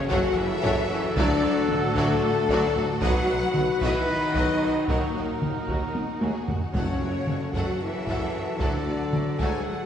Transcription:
Already playing: C#3 F#3 C#4 F#4 A4 F#5, impact
0.10 F#1 F#2 F#3 F#4 A4 C#5 F#5, taiko
0.36 E3 E4 E5
0.63 F#1 F#2 F#3 F#4 A4 C#5, taiko
0.91 F#1 F#2 F#3 F#4 A4
1.15 D2 D3 F#3 D4 F#4 A4 D5, taiko
1.43 D2 F#3 F#4 A4, taiko rim
1.68 D2 A2 F#3 A3 D4 F#4 A4, taiko mid
1.96 D2 F#3 F#4 A4 D5, taiko
2.49 D2 F#3 F#4 A4 D5, taiko
2.75 D2 F#3 F#4 A4
3.01 B1 D#3 F#3 D#4 F#4 B4 D#5 F#5, taiko
3.28 B1 F#3 F#4 B4
3.55 B1 F#3 D#4 F#4, taiko mid
3.81 B1 E3 F#3 E4 F#4 B4 D#5 E5, taiko
4.07 D#3 D#4 D#5
4.35 B1 F#3 F#4 B4 D#5, taiko
4.61 B1 F#3 F#4 B4
4.88 D#2 A#2 F#3 A#3 F#4 A#4 F#5, taiko
5.15 D#2 F#3 F#4 D#5
5.41 D#2 F#3 D#4 F#4, taiko mid
5.68 D#2 F#3 F#4, taiko
5.95 taiko high
6.21 D#2 F#3 F#4 G#4, taiko high
6.48 D#2 F#3 F#4, taiko low
6.73 F#1 F#2 C#3 F#3 C#4 F#4 A4 C#5 F#5, taiko
7.01 F#1 F#2 F#3 F#4 C#5
7.27 F#1 F#2 F#3 C#4 F#4 A4, taiko mid
7.53 F#1 F#2 F#3 F#4 A4 F#5, taiko
7.80 E3 E4 E5
8.06 F#1 F#2 F#3 F#4 A4 F#5, taiko
8.33 F#1 F#2 F#3 F#4 C#5
8.58 D2 A2 D3 F#3 A3 D4 F#4 A4 D5 F#5, taiko
8.86 D2 F#3 F#4 D5
9.12 D2 F#3 D4 F#4 A4, taiko mid
9.38 D2 F#3 G#3 F#4 G#4 A4 F#5 G#5, taiko
9.66 F#3 F#4 F#5

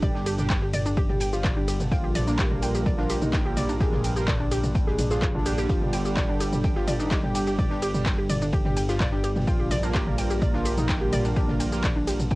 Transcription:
Already playing: G1 G2 D3 G3 D4 G4
0.02 G4 D5, kick, closed hi-hat, mid tom, ride, shaker
0.15 D4, snare
0.26 G4, closed hi-hat, open hi-hat, ride, shaker
0.38 G3 D4 G4, mid tom, shaker
0.49 G5, kick, snare, clap, closed hi-hat, ride, shaker
0.62 G4
0.73 D5, closed hi-hat, mid tom, open hi-hat, ride, shaker
0.86 D4, shaker
0.97 G4, kick, closed hi-hat, ride, shaker
1.09 G4, closed hi-hat, mid tom
1.20 G5, closed hi-hat, open hi-hat, ride, shaker
1.33 F4 G4, snare, shaker
1.44 D5, kick, snare, clap, closed hi-hat, mid tom, ride, shaker
1.57 D4 G4
1.68 G4, closed hi-hat, open hi-hat, ride, shaker
1.80 snare, mid tom, shaker
1.92 A#1 F4 G5, kick, closed hi-hat, ride, shaker
2.04 G4
2.15 D5, snare, closed hi-hat, mid tom, open hi-hat, ride, shaker
2.27 A#3 D4 F4 A#4, shaker
2.38 G4, kick, snare, clap, closed hi-hat, ride, shaker
2.51 mid tom
2.62 G5, closed hi-hat, open hi-hat, ride, shaker
2.75 G4, shaker
2.86 D5, kick, closed hi-hat, mid tom, ride, shaker
2.98 D4 F4, snare
3.10 G4, closed hi-hat, open hi-hat, ride, shaker
3.22 D#4, mid tom, shaker
3.33 G5, kick, snare, clap, closed hi-hat, ride, shaker
3.46 G4
3.57 D5, closed hi-hat, mid tom, open hi-hat, ride, shaker
3.69 D4, closed hi-hat, shaker
3.80 G4 G#4, kick, closed hi-hat, ride, shaker
3.92 snare, mid tom
4.04 G5, closed hi-hat, open hi-hat, ride, shaker
4.16 A#3 F4 G4 A#4, shaker
4.27 D5, kick, snare, clap, closed hi-hat, mid tom, ride, shaker
4.40 D4
4.51 G4, closed hi-hat, open hi-hat, ride, shaker
4.64 mid tom, shaker
4.75 G5, kick, closed hi-hat, ride, shaker
4.87 G4 G#4, closed hi-hat
4.99 D4, closed hi-hat, mid tom, open hi-hat, ride, shaker
5.11 F4 G#4, snare, shaker
5.22 G#4, kick, snare, clap, closed hi-hat, ride, shaker
5.34 D4 F4, mid tom
5.46 G3 D4 G4, closed hi-hat, open hi-hat, ride, shaker
5.58 G4, snare, shaker
5.69 G1 F4 G4, kick, closed hi-hat, ride, shaker
5.82 mid tom
5.93 G5, snare, closed hi-hat, open hi-hat, ride, shaker
6.05 G3 D4 G4, shaker
6.16 D5, kick, snare, clap, closed hi-hat, mid tom, ride, shaker
6.29 D4
6.40 G4, closed hi-hat, open hi-hat, ride, shaker
6.53 mid tom, shaker
6.64 G5, kick, closed hi-hat, ride, shaker
6.76 F4 G4, snare
6.88 D5, closed hi-hat, mid tom, open hi-hat, ride, shaker
7.00 D4 D#4, shaker
7.11 G4, kick, snare, clap, closed hi-hat, ride, shaker
7.23 G4, mid tom
7.35 G5, closed hi-hat, open hi-hat, ride, shaker
7.46 G4, closed hi-hat, shaker
7.58 G4 D5, kick, closed hi-hat, mid tom, ride, shaker
7.70 D4, snare
7.82 G4, closed hi-hat, open hi-hat, ride, shaker
7.94 G3 D4 G4, mid tom, shaker
8.06 G5, kick, snare, clap, closed hi-hat, ride, shaker
8.18 G4
8.29 D5, closed hi-hat, mid tom, open hi-hat, ride, shaker
8.42 D4, shaker
8.52 G4, kick, closed hi-hat, ride, shaker
8.65 G4, closed hi-hat, mid tom
8.77 G5, closed hi-hat, open hi-hat, ride, shaker
8.89 F4 G4, snare, shaker
9.00 D5, kick, snare, clap, closed hi-hat, mid tom, ride, shaker
9.12 D4 G4
9.24 G4, closed hi-hat, open hi-hat, ride, shaker
9.36 snare, mid tom, shaker
9.47 A#1 F4 G5, kick, closed hi-hat, ride, shaker
9.60 G4
9.71 D5, snare, closed hi-hat, mid tom, open hi-hat, ride, shaker
9.83 A#3 D4 F4 A#4, shaker
9.94 G4, kick, snare, clap, closed hi-hat, ride, shaker
10.07 mid tom
10.18 G5, closed hi-hat, open hi-hat, ride, shaker
10.31 G4, shaker
10.42 D5, kick, closed hi-hat, mid tom, ride, shaker
10.54 D4 F4, snare
10.65 G4, closed hi-hat, open hi-hat, ride, shaker
10.78 D#4, mid tom, shaker
10.89 G5, kick, snare, clap, closed hi-hat, ride, shaker
11.01 G4
11.13 D5, closed hi-hat, mid tom, open hi-hat, ride, shaker
11.25 D4, closed hi-hat, shaker
11.36 D4 G4, kick, closed hi-hat, ride, shaker
11.49 snare, mid tom
11.60 G5, closed hi-hat, open hi-hat, ride, shaker
11.72 A#3 F4 G4 A#4, shaker
11.83 D5, kick, snare, clap, closed hi-hat, mid tom, ride, shaker
11.96 D4
12.07 G4, closed hi-hat, open hi-hat, ride, shaker
12.20 mid tom, shaker
12.30 G5, kick, closed hi-hat, ride, shaker

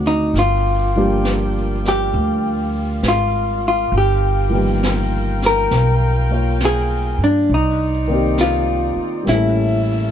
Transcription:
Already playing: D2 D3 D#3 A3 C4 F#4 C5 D5 F#5
0.06 D#4, snare
0.34 G1 F4 A#4 G5, brush sweep, snare
0.39 F4
0.96 F3 G3 A#3 D4 G4
1.25 snare, hi-hat pedal
1.85 G4, snare
2.13 D2 F5, brush sweep
3.03 G#1, snare, hi-hat pedal
3.08 F4
3.68 F4
3.92 G1 A#4 F5 G5, brush sweep
3.98 G4
4.49 F3 A#3 B3
4.54 D#3 G3
4.83 snare, hi-hat pedal
5.42 snare
5.46 A#4
5.71 B1, brush sweep, snare
6.31 A#3 F4 C#5
6.60 snare, hi-hat pedal
6.65 G#4
7.18 G2
7.24 D4
7.49 C2 D#4 C5 D5, brush sweep
7.54 D#4
8.08 D#3 A#3 C4 D5
8.14 G4
8.38 F4, snare, hi-hat pedal
8.96 muted upright bass stroke
9.23 G3 A#3 E5, brush sweep, snare
9.27 A1 C#4 E4 A4
9.34 A4

